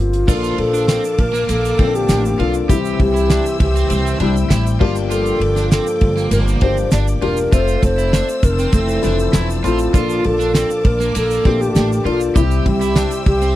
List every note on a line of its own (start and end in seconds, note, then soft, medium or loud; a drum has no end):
0.00 0.23 G1 medium
0.00 0.22 A#3 medium
0.00 0.22 C4 medium
0.00 0.22 F4 medium
0.00 0.55 F4 medium
0.00 0.22 G4 medium
0.13 closed hi-hat soft
0.27 0.53 A#1 medium
0.27 1.15 A#2 medium
0.27 1.46 F3 medium
0.27 1.40 A#3 medium
0.27 2.68 A#3 medium
0.27 1.40 D4 medium
0.27 1.46 F4 medium
0.27 1.40 F4 medium
0.27 0.57 F4 loud
0.27 1.40 A4 medium
0.27 2.67 F5 medium
0.27 2.67 A5 medium
0.27 2.67 D6 medium
0.27 kick loud
0.27 crash loud
0.27 shaker medium
0.44 shaker medium
0.58 0.96 A#1 medium
0.58 1.22 A4 loud
0.58 ride medium
0.73 0.88 D4 medium
0.73 shaker soft
0.88 1.03 C4 medium
0.88 snare loud
0.88 ride medium
0.88 shaker medium
1.04 shaker medium
1.18 1.44 A#1 loud
1.18 1.52 A#4 loud
1.18 kick medium
1.18 ride medium
1.33 1.47 A#3 medium
1.33 shaker soft
1.48 1.74 A#1 medium
1.48 1.77 A#3 medium
1.48 1.97 A4 loud
1.48 ride medium
1.48 shaker medium
1.65 shaker soft
1.78 2.04 A#1 loud
1.78 2.38 D3 medium
1.78 2.35 A#3 medium
1.78 1.93 C4 medium
1.78 1.86 C4 soft
1.78 2.38 D4 medium
1.78 2.35 F4 medium
1.78 2.35 A4 medium
1.78 kick loud
1.78 ride medium
1.86 2.38 D4 medium
1.95 2.42 G4 loud
1.95 shaker soft
2.09 2.34 A1 loud
2.09 2.24 D4 medium
2.09 snare loud
2.09 ride medium
2.09 shaker medium
2.25 shaker soft
2.39 2.64 B1 medium
2.39 2.67 A#3 medium
2.39 2.68 D4 medium
2.39 2.54 F4 medium
2.39 2.68 F4 medium
2.39 2.70 F4 medium
2.39 2.68 A4 medium
2.39 ride medium
2.54 shaker soft
2.69 2.94 C2 medium
2.69 3.56 C3 medium
2.69 4.47 E3 medium
2.69 3.81 G3 medium
2.69 3.81 C4 medium
2.69 4.47 E4 loud
2.69 3.81 E4 medium
2.69 2.78 E4 medium
2.69 2.98 G4 medium
2.69 3.82 G4 medium
2.69 4.79 C5 medium
2.69 4.79 E5 medium
2.69 7.49 G5 medium
2.69 4.79 E6 medium
2.69 kick loud
2.69 ride medium
2.69 shaker medium
2.85 shaker medium
3.00 3.37 C2 medium
3.00 3.57 G4 medium
3.00 kick medium
3.00 ride soft
3.14 3.29 E4 medium
3.14 shaker soft
3.30 3.44 D4 medium
3.30 snare loud
3.30 ride medium
3.30 shaker medium
3.46 shaker soft
3.60 3.85 C2 loud
3.60 4.18 G4 medium
3.60 kick medium
3.60 ride medium
3.75 3.89 C4 medium
3.75 shaker soft
3.90 4.15 C2 loud
3.90 4.19 C4 medium
3.90 ride medium
3.90 shaker medium
4.07 shaker soft
4.20 4.45 C2 loud
4.20 4.77 G3 medium
4.20 4.77 C4 medium
4.20 4.35 D4 medium
4.20 4.77 E4 medium
4.20 4.77 G4 medium
4.20 ride medium
4.37 shaker soft
4.50 4.75 A1 loud
4.50 4.65 E4 medium
4.50 snare loud
4.50 ride medium
4.50 shaker medium
4.67 shaker medium
4.80 5.31 G1 medium
4.80 5.67 G2 medium
4.80 7.18 F3 medium
4.80 5.92 A#3 medium
4.80 7.50 A#3 medium
4.80 5.92 D4 medium
4.80 5.93 F4 medium
4.80 4.95 F4 medium
4.80 7.18 F4 medium
4.80 5.93 G4 loud
4.80 12.32 D5 medium
4.80 7.50 D6 medium
4.80 kick loud
4.80 crash medium
4.96 shaker soft
5.11 5.40 F4 loud
5.11 5.68 A4 medium
5.11 ride medium
5.11 shaker medium
5.26 shaker soft
5.40 5.78 G1 medium
5.40 ride medium
5.56 5.70 D4 medium
5.56 snare soft
5.56 shaker soft
5.71 5.86 C4 medium
5.71 6.28 A4 medium
5.71 snare loud
5.71 ride medium
5.71 shaker medium
5.87 shaker medium
6.01 6.26 G1 medium
6.01 kick medium
6.01 ride medium
6.17 6.31 A#3 medium
6.17 shaker soft
6.31 6.56 G1 loud
6.31 6.61 A#3 medium
6.31 6.39 A#4 loud
6.31 ride medium
6.31 shaker medium
6.48 shaker soft
6.61 6.87 G1 loud
6.61 7.18 A#3 medium
6.61 6.76 C4 medium
6.61 7.18 D4 medium
6.61 7.18 F4 medium
6.61 7.18 G4 medium
6.61 6.90 C5 medium
6.61 kick medium
6.61 ride medium
6.77 shaker soft
6.91 7.17 G1 loud
6.91 7.06 D4 medium
6.91 6.99 D5 medium
6.91 snare loud
6.91 ride medium
6.91 shaker medium
7.07 shaker medium
7.21 7.47 E1 medium
7.21 7.50 A#3 medium
7.21 7.50 D4 medium
7.21 7.50 F4 medium
7.21 7.37 F4 medium
7.21 7.50 G4 medium
7.21 7.54 A#4 medium
7.21 ride medium
7.37 shaker soft
7.52 7.77 F1 loud
7.52 8.41 A3 medium
7.52 8.64 C4 medium
7.52 8.64 F4 medium
7.52 7.81 F4 loud
7.52 8.64 A4 medium
7.52 8.41 A4 medium
7.52 7.83 C5 medium
7.52 9.92 C5 medium
7.52 8.64 E5 medium
7.52 12.32 A5 medium
7.52 9.92 E6 medium
7.52 kick loud
7.52 ride medium
7.52 shaker medium
7.68 shaker soft
7.83 8.20 F1 loud
7.83 8.46 C5 medium
7.83 kick medium
7.83 ride medium
7.83 shaker soft
7.98 8.12 E4 medium
7.98 shaker soft
8.13 8.27 D4 medium
8.13 snare loud
8.13 ride medium
8.13 shaker medium
8.29 shaker medium
8.43 8.68 F1 loud
8.43 8.76 A#4 medium
8.43 kick medium
8.43 ride medium
8.43 shaker soft
8.59 8.72 C4 medium
8.59 shaker soft
8.72 8.98 F1 loud
8.72 9.62 E3 medium
8.72 9.02 C4 medium
8.72 9.62 E4 medium
8.72 9.34 A4 medium
8.72 kick medium
8.72 ride medium
8.72 shaker medium
8.89 shaker soft
9.02 9.29 F1 loud
9.02 9.59 F3 medium
9.02 9.59 C4 medium
9.02 9.18 D4 medium
9.02 9.59 E4 medium
9.02 9.59 A4 medium
9.02 ride medium
9.02 shaker soft
9.19 shaker soft
9.33 9.59 E1 loud
9.33 9.48 E4 medium
9.33 snare loud
9.33 ride medium
9.33 shaker medium
9.50 shaker medium
9.64 9.89 A1 medium
9.64 9.92 C4 medium
9.64 9.92 E4 medium
9.64 9.92 F4 medium
9.64 9.78 F4 medium
9.64 10.28 F4 medium
9.64 9.92 A4 medium
9.64 ride medium
9.64 shaker soft
9.79 shaker soft
9.94 10.19 A#1 medium
9.94 10.81 A#2 medium
9.94 11.13 F3 medium
9.94 11.06 A#3 medium
9.94 11.06 D4 medium
9.94 11.06 F4 medium
9.94 10.23 F4 loud
9.94 11.13 F4 medium
9.94 12.34 F4 medium
9.94 11.06 A4 medium
9.94 12.34 D6 medium
9.94 kick loud
9.94 ride medium
9.94 shaker medium
10.10 shaker medium
10.24 10.62 A#1 medium
10.24 10.88 A4 loud
10.24 ride medium
10.39 10.54 D4 medium
10.39 shaker soft
10.55 10.69 C4 medium
10.55 snare loud
10.55 ride medium
10.55 shaker medium
10.70 shaker medium
10.85 11.10 A#1 loud
10.85 11.16 A#4 loud
10.85 kick medium
10.85 ride medium
11.00 11.13 A#3 medium
11.00 shaker soft
11.15 11.40 A#1 medium
11.15 11.43 A#3 medium
11.15 11.62 A4 loud
11.15 ride medium
11.15 shaker medium
11.31 shaker soft
11.45 11.70 A#1 loud
11.45 12.05 A3 medium
11.45 12.01 A#3 medium
11.45 11.59 C4 medium
11.45 12.01 D4 medium
11.45 12.02 F4 medium
11.45 12.02 G4 medium
11.45 12.05 A4 medium
11.45 kick medium
11.45 ride soft
11.61 12.09 G4 medium
11.61 shaker soft
11.75 12.00 A1 loud
11.75 11.90 D4 medium
11.75 snare loud
11.75 ride medium
11.75 shaker medium
11.92 shaker soft
12.05 12.30 B1 medium
12.05 12.33 A#3 medium
12.05 12.34 D4 medium
12.05 12.20 F4 medium
12.05 12.34 F4 medium
12.05 12.36 F4 medium
12.05 12.34 A4 medium
12.05 ride medium
12.21 shaker medium
12.35 12.61 C2 medium
12.35 13.22 C3 medium
12.35 13.47 G3 medium
12.35 13.56 G3 medium
12.35 13.48 C4 medium
12.35 13.48 E4 medium
12.35 12.43 E4 medium
12.35 12.64 G4 loud
12.35 13.48 G4 medium
12.35 13.56 G4 medium
12.35 13.56 C5 medium
12.35 13.56 E5 medium
12.35 13.56 G5 medium
12.35 13.56 E6 medium
12.35 kick loud
12.35 ride medium
12.35 shaker medium
12.51 shaker soft
12.66 13.03 C2 loud
12.66 13.23 G4 medium
12.66 kick medium
12.66 ride medium
12.81 12.95 E4 medium
12.81 snare soft
12.81 shaker soft
12.96 13.11 D4 medium
12.96 snare loud
12.96 ride medium
12.96 shaker medium
13.11 shaker medium
13.26 13.51 C2 loud
13.26 13.56 G4 medium
13.26 kick medium
13.26 ride medium
13.42 13.55 C4 medium
13.42 shaker soft